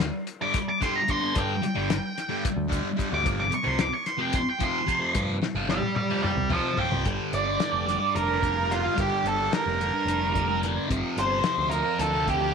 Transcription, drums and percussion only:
0.00 snare loud
0.00 closed hi-hat medium
0.27 closed hi-hat medium
0.54 kick loud
0.54 closed hi-hat loud
0.82 kick medium
0.82 snare soft
0.82 closed hi-hat medium
1.08 kick medium
1.08 closed hi-hat medium
1.36 kick loud
1.36 closed hi-hat loud
1.63 closed hi-hat medium
1.90 snare loud
1.90 closed hi-hat loud
2.18 snare soft
2.18 closed hi-hat medium
2.45 kick loud
2.45 closed hi-hat loud
2.72 kick medium
2.72 closed hi-hat medium
2.99 kick medium
2.99 closed hi-hat medium
3.26 kick loud
3.26 closed hi-hat medium
3.52 closed hi-hat medium
3.79 snare loud
3.79 closed hi-hat medium
4.06 snare soft
4.06 closed hi-hat medium
4.33 kick loud
4.33 closed hi-hat loud
4.60 kick medium
4.60 closed hi-hat medium
4.88 kick medium
4.88 closed hi-hat medium
5.15 kick loud
5.15 closed hi-hat loud
5.43 snare medium
5.69 snare medium
5.82 high tom medium
5.96 high tom medium
6.24 mid tom medium
6.38 mid tom medium
6.50 mid tom loud
6.77 floor tom loud
6.92 floor tom medium
7.05 kick loud
7.05 closed hi-hat medium
7.33 closed hi-hat medium
7.60 snare loud
7.60 closed hi-hat medium
7.89 snare soft
7.89 closed hi-hat medium
8.16 closed hi-hat medium
8.43 kick medium
8.43 closed hi-hat medium
8.72 snare soft
8.72 closed hi-hat medium
8.98 kick loud
8.98 closed hi-hat medium
9.26 closed hi-hat medium
9.53 snare loud
9.53 closed hi-hat medium
9.81 closed hi-hat medium
10.08 closed hi-hat loud
10.35 kick medium
10.35 closed hi-hat medium
10.63 snare soft
10.63 closed hi-hat medium
10.91 kick loud
10.91 closed hi-hat medium
11.18 closed hi-hat medium
11.44 snare loud
11.44 closed hi-hat medium
11.71 closed hi-hat medium
11.99 snare soft
11.99 closed hi-hat medium
12.27 kick medium
12.27 closed hi-hat medium

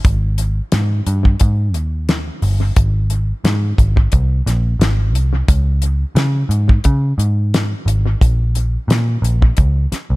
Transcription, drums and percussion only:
0.05 kick loud
0.05 closed hi-hat loud
0.38 closed hi-hat medium
0.72 snare loud
0.72 closed hi-hat medium
1.07 closed hi-hat medium
1.25 kick medium
1.40 kick medium
1.40 closed hi-hat medium
1.74 closed hi-hat medium
2.09 snare loud
2.09 closed hi-hat medium
2.42 open hi-hat medium
2.76 kick loud
2.76 closed hi-hat loud
3.10 closed hi-hat medium
3.45 snare loud
3.45 closed hi-hat medium
3.78 kick medium
3.78 closed hi-hat medium
3.97 kick medium
4.12 kick medium
4.12 closed hi-hat medium
4.47 snare soft
4.47 closed hi-hat medium
4.81 snare loud
4.81 closed hi-hat medium
5.15 closed hi-hat medium
5.48 kick loud
5.48 closed hi-hat loud
5.82 closed hi-hat medium
6.16 snare loud
6.16 closed hi-hat medium
6.51 closed hi-hat medium
6.69 kick medium
6.84 kick medium
6.84 closed hi-hat medium
7.19 closed hi-hat medium
7.54 snare loud
7.54 closed hi-hat medium
7.88 closed hi-hat medium
8.21 kick loud
8.21 closed hi-hat loud
8.55 closed hi-hat medium
8.90 snare loud
8.90 closed hi-hat medium
9.24 closed hi-hat medium
9.42 kick medium
9.57 kick medium
9.57 closed hi-hat medium
9.92 snare soft
9.92 closed hi-hat medium

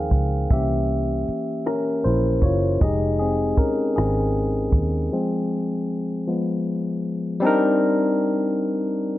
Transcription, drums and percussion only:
0.11 kick medium
0.11 closed hi-hat medium
0.50 kick loud
0.50 closed hi-hat medium
0.89 closed hi-hat soft
1.28 closed hi-hat medium
1.65 cross-stick loud
1.65 closed hi-hat medium
2.04 closed hi-hat soft
2.42 kick medium
2.42 closed hi-hat medium
2.81 kick loud
2.81 closed hi-hat medium
3.20 closed hi-hat soft
3.57 kick medium
3.57 closed hi-hat medium
3.96 cross-stick loud
3.96 closed hi-hat medium
4.35 closed hi-hat soft
4.72 kick medium
4.72 closed hi-hat medium

